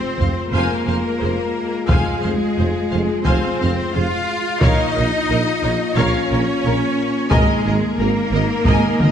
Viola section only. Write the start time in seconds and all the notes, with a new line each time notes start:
0.19 C5
0.52 C5 F5
0.87 C5
1.20 G#4 C5
1.89 C5 F5
2.23 C5
2.58 G#4 C5
2.92 C5
3.26 C5 F5
3.60 C5
3.94 G#4 C5
4.62 A#4 C#5
4.95 A#4
5.30 F4 A#4
5.63 A#4
5.96 A#4 C#5
6.31 A#4
6.65 F4 A#4
7.33 A#4 D#5
7.66 A#4
7.99 G#4 A#4
8.33 A#4
8.66 A#4 D#5
9.00 A#4